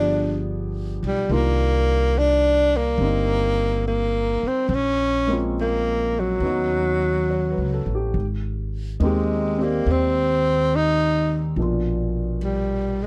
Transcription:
Already playing: G1 F3 B3 D4 G4 G#4
1.03 B1 G3
1.29 C2 D#3 G3 A#3 D4 F4
2.19 D4
2.77 A#3
2.98 G1 G3 C4
3.03 D#4
3.88 A#3
4.43 muted upright bass stroke
4.48 C4
4.68 A#1 C4
4.75 C#4
5.27 G#3 A#3 C4 C#4
5.32 F4
5.61 A#3
6.20 F#3
6.40 D#2 F#3 B3 C#4
6.44 D#4 F#4
7.30 C#5
7.51 B4
7.58 C#2
7.73 A4
7.86 A1
7.95 G4
8.14 G#1
9.00 D#2 G#3 A#3 C4 D#4
9.05 G4
9.58 C4 G4 D5
9.63 A#3
9.87 D#2
9.91 C4
10.76 D#4
11.56 A#1 A#2 B2 F3 D4
11.62 F4
12.44 G3
13.03 G#3

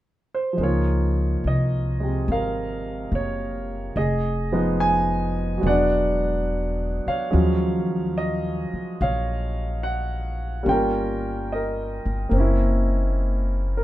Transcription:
0.34 C5
0.53 F3
0.57 C#2 G#3 A#3
0.63 D#4 F4 C#5
1.44 C2 D#5
2.00 C3 G#3
2.28 G#1 A#4 F5
3.12 F#1 C#5
3.96 F1 G#4 D#5
4.52 F3 G#3 B3 D#4
4.80 G#5
5.57 F#3 G#3
5.63 E1 B3 F#5
5.67 D4 D5
7.06 C#5 F5, muted upright bass stroke
7.31 D#2 F3 F#3 G#3 C#4
8.18 D#5
8.73 muted upright bass stroke
9.01 A#1 C#5 F5
9.83 F#5
10.63 G1 G3 A#3 C#4
10.67 F4 A#4 G5
11.52 A#4 D#5
12.05 G1
12.29 F#1 A#3 C4
12.37 C#4 E4
13.77 A#4

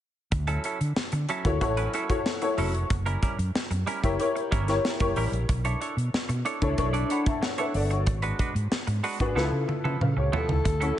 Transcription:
0.32 D2, muted clean electric guitar stroke, kick, closed hi-hat
0.47 F#3 C#4 E4 A4, closed hi-hat
0.64 F#3 C#4 E4 A4, closed hi-hat
0.81 D3, closed hi-hat
0.96 muted fretless electric bass stroke, snare
1.12 D3, muted clean electric guitar stroke, closed hi-hat
1.29 F#3 C#4 E4 A4, closed hi-hat
1.45 D2 E4 F#4 A4 C#5, muted clean electric guitar stroke, kick, closed hi-hat
1.61 A1 E4 F#4 A4 C#5, muted clean electric guitar stroke, kick, closed hi-hat
1.77 F#3 C#4 E4 B4, closed hi-hat
1.94 F#3 C#4 E4 A4, closed hi-hat
2.09 E4 F#4 A4 C#5, muted clean electric guitar stroke, kick, closed hi-hat
2.26 snare
2.42 E4 F#4 A4 C#5, muted clean electric guitar stroke, closed hi-hat
2.58 F1 F#3 C#4 E4 A4, open hi-hat
2.74 muted clean electric guitar stroke, closed hi-hat
2.90 F#1, muted clean electric guitar stroke, kick, closed hi-hat
3.06 G3 C#4 E4 A#4, closed hi-hat
3.22 G3 C#4 E4 A#4, kick, closed hi-hat
3.39 F#2, muted clean electric guitar stroke, closed hi-hat
3.55 muted fretless electric bass stroke, snare
3.70 F#2, muted clean electric guitar stroke, closed hi-hat
3.87 G3 C#4 E4 A#4, closed hi-hat
4.03 F#1 E4 G4 A#4 C#5, muted clean electric guitar stroke, kick, closed hi-hat
4.19 E4 G4 A#4 C#5, closed hi-hat
4.36 muted clean electric guitar stroke, closed hi-hat
4.51 G1 G3 C#4 E4 A#4, kick, closed hi-hat
4.68 E4 G4 A#4 C#5, muted clean electric guitar stroke, snare, closed hi-hat
4.85 snare
5.00 F#1 E4 G4 A#4 C#5, muted clean electric guitar stroke, kick, closed hi-hat
5.16 A1 G3 C#4 E4 A#4, open hi-hat
5.32 A#1, muted clean electric guitar stroke, closed hi-hat
5.49 B1, muted clean electric guitar stroke, kick, closed hi-hat
5.65 D4 E4 A4 C#5, closed hi-hat
5.81 D4 E4 A4 C#5, closed hi-hat
5.97 B2, muted clean electric guitar stroke, closed hi-hat
6.13 muted fretless electric bass stroke, snare
6.29 B2, muted clean electric guitar stroke, closed hi-hat
6.45 D4 E4 A4 C#5, closed hi-hat
6.61 C#2 D4 E4 A4 C#5, muted clean electric guitar stroke, kick, closed hi-hat
6.78 B1 D4 E4 A4 C#5, muted clean electric guitar stroke, kick, closed hi-hat
6.93 D4 E4 A4 D5, closed hi-hat
7.10 D4 E4 A4 C#5 F#5 B5, closed hi-hat
7.26 E5 A5, kick, closed hi-hat
7.42 C#5 F#5, muted clean electric guitar stroke, snare
7.58 D4 E4 A4 B4 C#5 E5, closed hi-hat
7.74 G1 A4 D5, muted clean electric guitar stroke, open hi-hat
7.91 F#4 C#5, muted clean electric guitar stroke, closed hi-hat
8.07 G#1, muted clean electric guitar stroke, kick, closed hi-hat
8.22 G#3 D4 F#4 B4, closed hi-hat
8.39 G#3 D4 F#4 B4, kick, closed hi-hat
8.55 G#2, muted clean electric guitar stroke, closed hi-hat
8.71 muted fretless electric bass stroke, snare
8.87 G#2, muted clean electric guitar stroke, closed hi-hat
9.03 G#3 D4 F#4 B4, open hi-hat
9.20 G#1 D4 F#4 G#4 B4, kick, closed hi-hat
9.35 C#2 F3 B3 E4 F4 A4 B4, snare
9.52 C#3, muted clean electric guitar stroke
9.68 muted clean electric guitar stroke, high tom
9.84 C#3 F3 B3 E4 A4, high tom
10.00 C#3 B4 F5, mid tom
10.16 C#2 G4 C#5, muted clean electric guitar stroke
10.32 F3 B3 E4 A4, floor tom
10.37 A4
10.48 C#2 E4 A4, muted clean electric guitar stroke, floor tom
10.64 D2, muted clean electric guitar stroke, kick, closed hi-hat
10.80 F#3 C#4 E4 F#4 A4, closed hi-hat

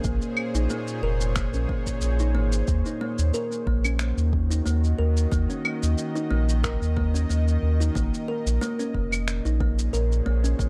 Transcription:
Already playing: A#2 G#4 C5 C#5
0.04 A#1 A#3, kick, cabasa
0.22 cabasa
0.37 claves
0.55 A#1 D#4, cabasa
0.70 A#3, cabasa
0.87 cabasa
1.02 F1 A#4
1.21 cabasa
1.36 A#3, finger snap, kick, cabasa
1.53 A#1 C#4, cabasa
1.69 A#3, kick
1.86 kick, cabasa
2.01 A#1, cabasa
2.19 D#4, cabasa
2.35 G#1 A#3
2.52 cabasa
2.67 D#2 D#3, kick, cabasa
2.85 D#4, cabasa
3.01 A#3
3.18 D#2, cabasa
3.25 F#4
3.34 A#4, cabasa
3.52 cabasa
3.67 A#1 A#3, kick
3.80 D#5
3.85 C#4, cabasa, claves
3.99 A#3, finger snap, cabasa
4.17 D#2, cabasa
4.33 kick
4.51 D#4, cabasa
4.66 D#2 A#3, cabasa
4.84 cabasa
4.94 A#4
4.99 D#2 A#4
5.17 cabasa
5.32 D#2 A#3, kick, cabasa
5.50 C#4, cabasa
5.65 A#3, claves
5.83 D#2, cabasa
5.98 cabasa
6.15 D#4, cabasa
6.31 A#1 A#3
6.49 cabasa
6.64 A#4, finger snap, kick, cabasa
6.82 D#2, cabasa
6.97 A#3, kick
7.14 C#4, cabasa
7.29 D#2 A#3, cabasa
7.48 cabasa
7.63 D#2
7.80 D#4, cabasa
7.95 A#1 A#2 A#3, kick, cabasa
8.14 cabasa
8.28 A#4
8.46 A#1, cabasa
8.61 A#3, cabasa
8.73 C#5
8.79 C#4, cabasa
8.88 G#4
8.94 F1 A#3, kick
9.12 cabasa, claves
9.25 C5, finger snap, cabasa
9.45 A#1 D#4, cabasa
9.60 A#3, kick
9.79 cabasa
9.93 A#1 A#4, cabasa
10.12 cabasa
10.26 A#1 A#3
10.44 C#4, cabasa
10.59 A#1 A#3, kick, cabasa

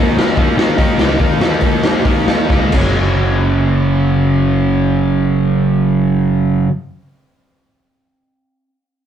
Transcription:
Already playing: D#2 D#3
0.00 A#3 D#4
0.17 D#2 D#3 A#3 D#4, snare
0.36 D#2 D#3 A#3 D#4, kick, open hi-hat
0.57 D#3 A#3 D#4, snare
0.78 D#3 A#3 D#4, kick, open hi-hat
0.98 C#2 D#3 A#3 D#4, snare
1.20 D#2 D#3 A#3 D#4, kick, open hi-hat
1.40 D#2 D#3 A#3 D#4, snare
1.61 D#2 D#3 A#3 D#4, kick, open hi-hat
1.83 D#2 D#3 A#3 D#4, snare
2.04 D#2 D#3 A#3 D#4, kick, open hi-hat
2.27 D#2 D#3 A#3 D#4, snare
2.49 C#2 D#3 A#3 D#4, kick, snare
2.71 F#1 F#2 C#3 F#3, kick, crash

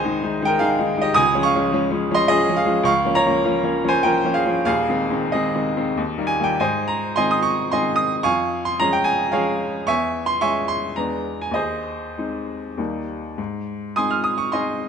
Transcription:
Already playing: D#3 G#3 D#4 C5 D#5 G#5 C6
0.04 D#3 G#3 D#4
0.22 D#3 G#3 D#4
0.42 D#3 G#3 D#4 G5
0.47 A#4
0.59 D#3 G#3 D#4 G#4 F5
0.79 D#3 G#3 D#4
0.97 D#3 G#3 D#4
1.02 G4 D#5
1.14 C#2 G#5 D#6
1.34 F3 G#3 C#4
1.43 F5 C#6
1.55 F3 G#3 C#4
1.72 F3 G#3 C#4
1.90 F3 G#3 C#4
2.11 F3 G#3 C#4 C6
2.15 D#5
2.28 F3 G#3 C#4 G#4 D#5
2.49 F3 G#3 C#4
2.56 G#4 F5
2.65 F3 G#3 C#4
2.84 C#2 F5 C#6
3.05 F3 A#3 C#4
3.15 C#5 A#5
3.26 F3 A#3 C#4
3.45 F3 A#3 C#4
3.63 F3 A#3 C#4
3.84 F3 A#3 C#4
3.88 C5 G#5
4.03 F3 A#3 C#4 A#4 G5
4.25 F3 A#3 C#4
4.34 G#4 F5
4.45 F3 A#3 C#4
4.65 D#1 D#2 G#4 F5
4.88 D#3 G#3 C4
5.10 D#3 G#3 C4
5.32 D#3 G#3 C4 G#4 D#5
5.55 D#3 G#3 C4
5.77 D#3 G#3 C4
5.97 D#2
6.18 D#3 G3 A#3
6.27 G#5
6.39 D#3 G3 A#3
6.44 G5
6.60 G#2 C5 D#5 G#5
6.88 A#5
7.16 D#3 G#3 C4 D#5 G#5 C6
7.31 D#6
7.43 C#6
7.72 D#3 G#3 C4 D#5 G#5 C6
7.96 D#6
8.23 F2 F5 G#5 C#6
8.65 C6
8.80 F3 G#3 C#4 A#5
8.93 G5
9.04 G#5
9.32 F3 G#3 C#4 G#4 C#5 F5
9.87 E2 E5 G#5 C#6
10.26 C6
10.41 G#3 C#4 E5 G#5 C#6
10.68 C6
10.96 E2 G#3 B3 D4 A#5
11.41 G#5
11.51 D#2 D#5
11.55 G#4 C5
12.18 G#3 C4 D#4
12.78 D#2 G3 A#3 D#4
13.38 G#2
13.96 G#3 C4 D#4 G#5 C6 D#6
14.11 F6
14.24 D#6
14.38 C#6
14.52 G#3 C4 D#4 D#5 G#5 C6

